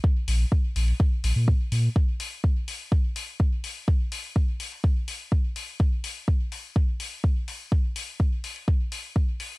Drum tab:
HH |--o---oo--o---o-|--o---o---o---o-|--o---oo--o---o-|--o---o---o---o-|
BD |o---o---o---o---|o---o---o---o---|o---o---o---o---|o---o---o---o---|

HH |--o---oo--o---o-|
BD |o---o---o---o---|